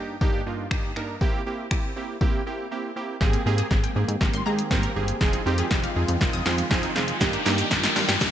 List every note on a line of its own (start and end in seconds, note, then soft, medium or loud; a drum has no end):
0.00 0.16 G2 medium
0.00 0.16 A#3 medium
0.00 0.17 D4 medium
0.00 0.17 D#4 medium
0.00 0.17 G4 medium
0.21 0.41 G2 loud
0.21 0.42 A#3 loud
0.21 0.42 D4 loud
0.21 0.42 D#4 loud
0.21 0.42 G4 loud
0.21 kick loud
0.46 0.67 G2 medium
0.46 0.66 A#3 medium
0.46 0.67 D4 medium
0.46 0.67 D#4 medium
0.46 0.67 F4 medium
0.71 0.91 G2 medium
0.71 0.91 A#3 medium
0.71 0.92 D4 medium
0.71 0.92 D#4 medium
0.71 0.92 G4 medium
0.71 finger snap loud
0.71 kick loud
0.96 1.17 G2 medium
0.96 1.17 A#3 medium
0.96 1.17 D4 medium
0.96 1.17 D#4 medium
0.96 1.17 A#4 medium
0.96 finger snap medium
1.21 1.41 A#3 loud
1.21 1.42 C4 loud
1.21 1.42 E4 medium
1.21 1.42 G4 loud
1.21 kick loud
1.46 1.67 A#3 medium
1.46 1.67 C4 medium
1.46 1.67 E4 medium
1.46 1.67 G4 medium
1.71 1.91 A#3 medium
1.71 1.92 C4 medium
1.71 1.92 E4 medium
1.71 1.92 G4 medium
1.71 finger snap loud
1.71 kick loud
1.96 2.16 A#3 medium
1.96 2.17 C4 medium
1.96 2.17 E4 medium
1.96 2.17 G4 medium
2.21 2.41 A#3 loud
2.21 2.42 C4 loud
2.21 2.42 E4 loud
2.21 2.42 G4 loud
2.21 kick loud
2.46 2.67 A#3 medium
2.46 2.67 C4 medium
2.46 2.67 E4 medium
2.46 2.67 G4 medium
2.71 2.92 A#3 medium
2.71 2.92 C4 medium
2.71 2.92 E4 medium
2.71 2.92 G4 medium
2.96 3.16 A#3 medium
2.96 3.16 C4 medium
2.96 3.17 E4 medium
2.96 3.17 G4 medium
3.21 3.37 G#1 loud
3.21 5.19 D#3 medium
3.21 3.31 G3 medium
3.21 5.19 G#3 medium
3.21 3.41 A#3 loud
3.21 5.19 A#3 medium
3.21 7.17 C4 medium
3.21 3.41 C4 loud
3.21 5.19 G4 medium
3.21 3.42 G4 medium
3.21 3.42 G#4 loud
3.21 kick loud
3.21 snare soft
3.21 riser medium
3.33 3.43 C4 medium
3.33 closed hi-hat soft
3.46 3.62 G#2 loud
3.46 3.56 A#3 medium
3.46 3.66 A#3 loud
3.46 3.67 C4 loud
3.46 3.67 G4 loud
3.46 3.67 G#4 loud
3.58 3.68 G#4 loud
3.58 closed hi-hat medium
3.71 3.87 G#1 loud
3.71 3.91 A#3 medium
3.71 3.91 C4 medium
3.71 3.81 C4 medium
3.71 3.92 G4 medium
3.71 3.92 G#4 medium
3.71 kick loud
3.71 snare medium
3.83 3.93 G5 medium
3.83 closed hi-hat soft
3.96 4.04 G#2 loud
3.96 4.16 A#3 medium
3.96 4.16 C4 medium
3.96 4.16 G4 medium
3.96 4.17 G#4 medium
4.08 4.17 G#2 medium
4.08 closed hi-hat medium
4.21 4.29 G#1 loud
4.21 4.41 A#3 medium
4.21 4.41 C4 medium
4.21 4.42 G4 medium
4.21 4.42 A#4 medium
4.21 kick loud
4.21 snare medium
4.34 4.42 G#1 medium
4.34 4.43 C6 loud
4.34 closed hi-hat medium
4.46 4.62 G#2 loud
4.46 4.66 A#3 medium
4.46 4.66 C4 medium
4.46 4.67 G4 medium
4.46 4.67 G#4 medium
4.46 4.56 A#5 medium
4.59 closed hi-hat medium
4.71 4.87 G#1 loud
4.71 4.81 G3 medium
4.71 4.91 A#3 loud
4.71 4.91 C4 loud
4.71 4.91 G4 loud
4.71 4.92 A#4 loud
4.71 kick loud
4.71 snare medium
4.83 4.93 C4 medium
4.83 closed hi-hat soft
4.96 5.12 G1 medium
4.96 5.16 A#3 medium
4.96 5.16 C4 medium
4.96 5.16 G4 medium
4.96 5.17 G#4 medium
5.08 closed hi-hat medium
5.21 5.37 F1 loud
5.21 7.19 D#3 medium
5.21 7.19 F3 medium
5.21 5.31 F3 medium
5.21 7.19 G#3 medium
5.21 5.41 C4 loud
5.21 5.41 D#4 loud
5.21 7.19 F4 medium
5.21 5.42 F4 loud
5.21 5.42 G#4 loud
5.21 kick loud
5.21 snare medium
5.33 5.43 D#4 medium
5.33 closed hi-hat soft
5.46 5.62 F2 loud
5.46 5.56 C4 medium
5.46 5.66 C4 loud
5.46 5.67 D#4 loud
5.46 5.67 F4 medium
5.46 5.67 G4 loud
5.58 5.68 G#4 loud
5.58 closed hi-hat medium
5.71 5.87 F1 loud
5.71 5.91 C4 medium
5.71 5.91 D#4 medium
5.71 5.81 D#4 medium
5.71 5.91 F4 medium
5.71 5.92 G4 medium
5.71 kick loud
5.71 snare medium
5.84 5.93 F5 medium
5.84 closed hi-hat soft
5.96 6.04 F2 loud
5.96 6.16 C4 medium
5.96 6.16 D#4 medium
5.96 6.17 F4 medium
5.96 6.17 G#4 medium
6.08 6.17 F2 loud
6.08 closed hi-hat medium
6.21 6.29 F1 loud
6.21 6.41 C4 medium
6.21 6.41 D#4 medium
6.21 6.41 F4 medium
6.21 6.42 A#4 loud
6.21 kick loud
6.21 snare medium
6.33 6.42 F1 loud
6.33 6.43 D#6 loud
6.33 closed hi-hat medium
6.46 6.62 F2 loud
6.46 6.66 C4 medium
6.46 6.66 D#4 medium
6.46 6.66 F4 medium
6.46 6.66 G#4 medium
6.46 6.55 C6 medium
6.46 snare medium
6.58 closed hi-hat medium
6.70 6.87 F1 medium
6.70 6.80 F3 medium
6.70 6.91 C4 loud
6.70 6.91 D#4 loud
6.70 6.91 F4 loud
6.70 6.91 G#4 loud
6.70 kick loud
6.70 snare medium
6.83 6.93 D#4 medium
6.83 closed hi-hat soft
6.95 7.12 F1 medium
6.95 7.16 C4 medium
6.95 7.16 D#4 medium
6.95 7.16 F4 medium
6.95 7.16 G#4 loud
6.95 snare medium
7.08 closed hi-hat medium
7.20 7.37 G1 loud
7.20 7.30 D#3 medium
7.20 8.31 D#3 medium
7.20 8.31 G3 medium
7.20 7.41 A#3 loud
7.20 8.31 A#3 medium
7.20 7.41 D4 loud
7.20 8.31 D4 medium
7.20 7.41 D#4 loud
7.20 8.31 G4 medium
7.20 7.41 G4 loud
7.20 kick loud
7.20 snare medium
7.20 shaker medium
7.33 7.43 D4 medium
7.33 closed hi-hat medium
7.33 shaker medium
7.45 7.62 G2 loud
7.45 7.66 A#3 loud
7.45 7.56 A#3 medium
7.45 7.66 D4 loud
7.45 7.66 D#4 loud
7.45 7.66 G4 loud
7.45 snare medium
7.45 open hi-hat medium
7.45 shaker medium
7.58 7.68 G4 loud
7.58 closed hi-hat medium
7.58 shaker medium
7.70 7.87 G1 loud
7.70 7.91 A#3 medium
7.70 7.91 D4 medium
7.70 7.81 D4 medium
7.70 7.91 D#4 medium
7.70 7.91 F4 medium
7.70 kick loud
7.70 snare loud
7.70 shaker medium
7.83 7.93 D#5 medium
7.83 snare loud
7.83 closed hi-hat medium
7.83 shaker medium
7.95 8.04 G2 loud
7.95 8.16 A#3 medium
7.95 8.16 D4 medium
7.95 8.16 D#4 medium
7.95 8.16 F4 loud
7.95 snare loud
7.95 open hi-hat medium
7.95 shaker medium
8.08 8.17 G2 loud
8.08 snare loud
8.08 closed hi-hat medium
8.08 shaker medium
8.20 8.29 G1 loud
8.20 8.31 A#3 medium
8.20 8.31 D4 medium
8.20 8.31 D#4 medium
8.20 8.31 G4 loud
8.20 kick loud
8.20 snare loud
8.20 shaker medium